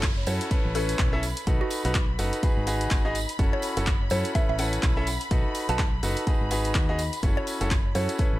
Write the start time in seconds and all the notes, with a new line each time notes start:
Already playing: F#1 B5, downlifter
0.03 kick, clap, closed hi-hat
0.27 F#2 C#4 E4 F#4 A4 C#5, open hi-hat, tambourine
0.41 closed hi-hat, tambourine
0.51 C#4 E4 A4 B4, kick, closed hi-hat, tambourine
0.65 A1
0.75 C#4 E4 A4 B4, open hi-hat, tambourine
0.89 closed hi-hat, tambourine
0.99 B1, kick, clap, closed hi-hat
1.13 C#4 E4 A4 E5
1.23 open hi-hat, tambourine
1.37 closed hi-hat, tambourine
1.47 B1 D#4 F#4 A4 B4, kick, closed hi-hat, tambourine
1.61 F#4
1.70 open hi-hat, tambourine
1.85 B1 D#4 F#4 A4 B4, closed hi-hat, tambourine
1.95 kick, clap, closed hi-hat, tambourine
2.19 F#1 D#4 F#4 A4 B4, open hi-hat, tambourine
2.33 closed hi-hat, tambourine
2.43 D#4 F#4 G#4 B4, kick, closed hi-hat, tambourine
2.57 G#1
2.67 D#4 F#4 G#4 B4, open hi-hat, tambourine
2.81 closed hi-hat, tambourine
2.90 G#1, kick, clap, closed hi-hat, tambourine
3.05 D#4 F#4 G#4 D#5
3.15 open hi-hat, tambourine
3.29 closed hi-hat, tambourine
3.39 F#1 C#4 E4 F#4 A4, kick, closed hi-hat, tambourine
3.53 C#5
3.62 open hi-hat, tambourine
3.77 F#1 C#4 E4 F#4 A4, closed hi-hat, tambourine
3.87 kick, clap, closed hi-hat, tambourine
4.10 F#2 C#4 E4 F#4 A4 C#5, open hi-hat, tambourine
4.25 closed hi-hat, tambourine
4.35 C#4 E4 A4 B4 E5, kick, closed hi-hat, tambourine
4.49 A1 E5
4.59 C#4 E4 A4 B4 F#5, open hi-hat, tambourine
4.73 closed hi-hat, tambourine
4.83 B1, kick, clap, closed hi-hat
4.97 C#4 E4 A4 E5
5.07 open hi-hat, tambourine
5.21 closed hi-hat, tambourine
5.31 B1 D#4 F#4 A4 B4, kick, closed hi-hat, tambourine
5.55 open hi-hat, tambourine
5.69 B1 D#4 F#4 A4 B4 A5, closed hi-hat, tambourine
5.78 kick, clap, closed hi-hat, tambourine
6.03 F#1 D#4 F#4 A4 B4, open hi-hat, tambourine
6.16 closed hi-hat, tambourine
6.27 D#4 F#4 G#4 B4, kick, closed hi-hat, tambourine
6.41 G#1
6.51 D#4 F#4 G#4 B4, open hi-hat, tambourine
6.64 closed hi-hat, tambourine
6.75 D#2, kick, clap, closed hi-hat
6.89 D#4 F#4 G#4 D#5
6.99 open hi-hat, tambourine
7.13 closed hi-hat, tambourine
7.23 F#1 C#4 E4 F#4 A4, kick, closed hi-hat
7.37 C#5
7.47 open hi-hat, tambourine
7.61 F#1 C#4 E4 F#4 A4, closed hi-hat, tambourine
7.71 kick, clap, closed hi-hat
7.95 F#2 C#4 E4 F#4 A4 C#5, open hi-hat, tambourine
8.09 closed hi-hat, tambourine
8.18 C#4 E4 A4 B4, kick, closed hi-hat, tambourine
8.33 A1